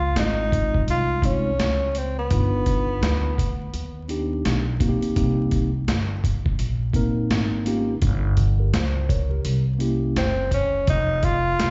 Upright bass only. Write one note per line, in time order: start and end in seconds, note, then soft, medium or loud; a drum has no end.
0.00 0.13 C#2 loud
0.16 0.84 G#1 medium
0.87 1.55 C2 medium
1.59 2.27 C#2 medium
2.31 2.98 G1 loud
3.02 3.70 D2 medium
3.74 4.41 D#2 medium
4.45 5.00 B1 medium
5.02 muted upright bass stroke soft
5.16 5.84 C2 medium
5.88 6.55 G1 medium
6.59 7.27 A#1 medium
7.31 7.98 G#1 medium
8.02 8.70 G1 loud
8.73 9.41 C#2 medium
9.45 10.13 C2 medium
10.16 10.84 F#1 medium
10.88 11.55 F1 loud
11.59 11.70 C2 medium